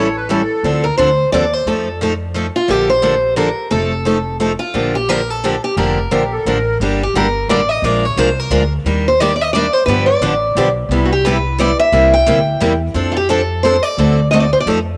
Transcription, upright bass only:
Already playing: A1
0.63 D2
0.98 D2
1.32 D#2
1.66 F2
2.68 A#1
3.71 F1
4.74 A#1
5.77 F1
6.11 A#1
6.45 A1
6.80 G1
7.14 G1
7.48 A1
7.82 A#1
8.16 C2
8.50 D2
8.85 D#2
9.87 G2
10.21 A1
10.55 B1
10.89 C2
11.92 C2
12.27 D2
12.61 E2
12.94 F2
13.97 D2
14.66 F2

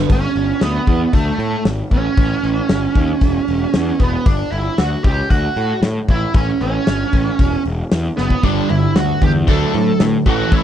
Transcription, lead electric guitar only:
0.12 C#4
0.63 B3
1.14 A3
1.93 C#4
3.99 B3
4.26 D4
4.52 E4
4.78 F#4
5.04 G4
5.30 F#4
6.11 E4
6.36 C#4
6.62 C#4
8.17 B3
8.44 D4
8.70 E4
8.96 F#4
9.24 G4
9.49 A4
10.27 F#4
10.53 E4

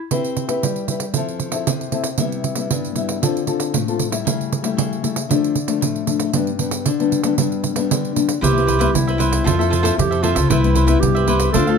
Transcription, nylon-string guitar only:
0.11 C4 E4 G4 B4
0.48 E4 G4 B4
0.63 G3
0.89 E4 G4 B4
1.15 F3 C4 E4 A4
1.51 C4 E4 A4
1.67 C3
1.92 C4 E4 A4
2.19 C3 G3 B3 E4
2.57 G3 B3 E4
2.71 G2
2.95 G3 B3 E4
3.22 D3 C4 F4 A4
3.47 C4 F4 A4
3.74 A2
3.88 C4 F4 A4
4.11 G3 A3 E4
4.25 C#3
4.62 G3 A3 E4
4.77 C#3
5.02 G3 A3 E4
5.29 D3 F3 A3 D4
5.67 F3 A3 D4
5.81 A2
6.06 F3 A3 D4
6.34 G2 G3 B3 D4
6.59 G3 B3 D4
6.86 D3
6.99 G3 B3 D4
7.24 G3 B3 D4
7.38 G2 G3 B3 D4
7.76 G3 B3 D4
7.91 D3
8.16 G3 B3 D4
8.42 C3 G3 B3 E4
8.56 G3 B3 E4
8.80 G3 B3 E4
8.94 G2
9.19 G3 B3 E4
9.46 F3 C4 E4 A4
9.58 C4 E4 A4
9.82 C4 E4 A4
9.98 C3
10.24 C4 E4 A4
10.51 C3 G3 B3 E4
10.63 G3 B3 E4
10.88 G3 B3 E4
11.02 G2
11.27 G3 B3 E4
11.54 D3 A3 C4 F4
11.68 A3 C4 F4

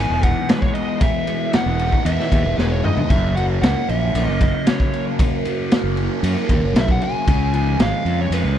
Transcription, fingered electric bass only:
0.10 E1
1.66 E1
2.05 E2
2.32 D#2
2.44 E1
2.58 E1
3.10 F#1
3.62 C#2
3.89 A#1
4.14 A#1
4.27 F#1
5.83 F#1
6.23 F#2
6.49 D#2
6.61 F#1
6.73 B1
7.27 C#2
7.79 G#1
8.05 F2
8.30 F2
8.44 C#2

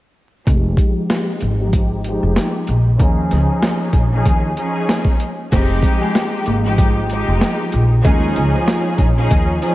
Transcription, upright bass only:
0.47 F1
1.42 G#1
2.23 F1
2.68 A#1
3.00 D#2
3.32 C#2
3.93 A#1
4.26 D#2
5.52 F1
6.47 G#1
7.28 F1
7.74 A#1
8.05 D#2
8.37 C#2
8.99 A#1
9.31 D#2

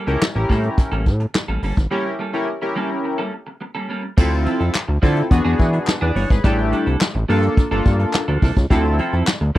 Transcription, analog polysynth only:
0.07 C#4 E4 G4 A#4
0.35 C#4 E4 G4 A#4
1.91 C#4 E4 G4 A#4
2.33 C#4 E4 G4 A#4
2.62 C#4 E4 G4 A#4
4.17 C4 E4 F4 A4
5.02 C4 E4 F4 A4
5.31 B3 D4 F#4 G#4
5.45 B3 D4 F#4 G#4
6.02 B4 D5
6.16 C#5
6.30 G#4 B4
6.44 A3 D4 E4 G4
7.29 A#3 D4 F4 A4
7.71 A#3 D4 F4 A4
8.70 C4 E4 F4 A4
9.55 C4

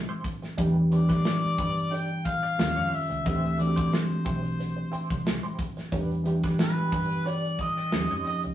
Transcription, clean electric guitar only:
0.09 E4 G4 C5
0.24 muted clean electric guitar stroke
0.42 muted clean electric guitar stroke
0.58 D4 G4 B4
0.92 muted clean electric guitar stroke
1.09 D4 G4 B4
1.24 muted clean electric guitar stroke
1.58 D4 G4 B4
1.77 muted clean electric guitar stroke
1.92 D4 G4 D5
2.26 muted clean electric guitar stroke
2.43 D4 G4 D5
2.59 muted clean electric guitar stroke
2.76 F4 G4 C#5
2.92 muted clean electric guitar stroke
3.10 muted clean electric guitar stroke
3.25 E4 G4 C5
3.58 muted clean electric guitar stroke
3.76 E4 G4 C5
3.91 muted clean electric guitar stroke
4.25 E4 G4 C5
4.42 muted clean electric guitar stroke
4.59 muted clean electric guitar stroke
4.76 muted clean electric guitar stroke
4.92 E4 G4 C5
5.10 muted clean electric guitar stroke
5.25 muted clean electric guitar stroke
5.43 E4 G4 C5
5.59 muted clean electric guitar stroke
5.77 muted clean electric guitar stroke
5.92 D4 G4 B4
6.26 muted clean electric guitar stroke
6.44 D4 G4 B4
6.60 muted clean electric guitar stroke
6.92 D4 G4 B4
7.11 muted clean electric guitar stroke
7.25 D4 G4 D5
7.60 muted clean electric guitar stroke
7.77 D4 G4 D5
8.11 F4 G4 C#5
8.26 muted clean electric guitar stroke
8.44 muted clean electric guitar stroke

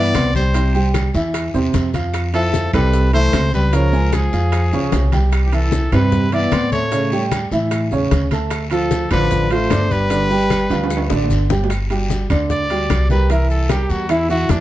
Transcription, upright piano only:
Already playing: E3 E4 E5
0.15 C4 C5 C6
0.55 C3 C4 C5
0.74 G3 G4 G5
1.14 E3 E4 E5
1.54 C3 C4 C5
1.94 F3 F4 F5
2.33 F3 E4 E5
2.74 C3 C4 A4
3.13 E3 E4 E5
3.33 C4 C5 C6
3.73 C#3 C#4 C#5
3.93 G#3 G#4 G#5
4.33 F3 F4 F5
4.73 C#3 C#4 C#5
5.13 G3 G4 G5
5.53 E3 E4 E5
5.92 C3 C4 B4
6.33 E3 E4 E5
6.52 C4 C5 C6
6.92 C#3 C#4 C#5
7.12 G3 G4 G5
7.52 E3 E4 E5
7.92 C#3 C#4 C#5
8.32 A3 A4 A5
8.71 F3 F4 F5
9.11 D3 D4 D5
9.51 F3 F4 F5
9.71 D4 D5 D6
10.10 D3 D4 D5
10.30 G3 G4 G5
10.70 F3 F4 F5
11.10 D3 D4 D5
11.50 G3 G4 G5
11.90 G3 F#4 G4
12.30 D3 D4 D5
12.71 G3 F#4 G4
13.10 G3 G4 A#4
13.30 E3 E4 E5
13.70 G3 G4 A#4
14.09 E3 E4 E5
14.29 E3 E4 E5

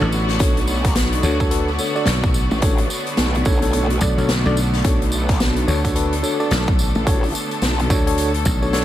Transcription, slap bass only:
0.01 A1
1.23 D2
2.07 B1
4.01 B1
4.18 B1
4.46 B1
5.68 D2
6.51 B1
7.90 D2
8.46 B1

